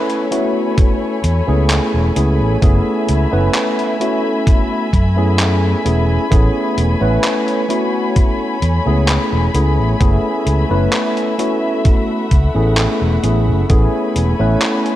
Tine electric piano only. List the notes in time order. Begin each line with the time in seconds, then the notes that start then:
Already playing: A3 B3 C#4 E4 B4
0.31 A3 B3 C#4 E4 F#4
1.47 A3 B3 C#4 E4 G#4
2.15 A3 B3 C#4 E4 G#4
2.62 A3 B3 C#4 E4 G#4
3.31 A3 B3 C#4 E4 B4
4.00 A3 B3 C#4 E4 F#4
5.16 A3 B3 C#4 E4 G#4
5.84 A3 B3 C#4 E4 G#4
6.30 A3 B3 C#4 E4 G#4
7.00 A3 B3 C#4 E4 B4
7.68 A3 B3 C#4 E4 F#4
8.85 A3 B3 C#4 E4 G#4
9.54 A3 B3 C#4 E4 G#4
10.00 A3 B3 C#4 E4 G#4
10.70 A3 B3 C#4 E4 B4
11.38 A3 B3 C#4 E4 F#4
12.54 A3 B3 C#4 E4 G#4
13.23 A3 B3 C#4 E4 G#4
13.69 A3 B3 C#4 E4 G#4
14.39 A3 B3 C#4 E4 B4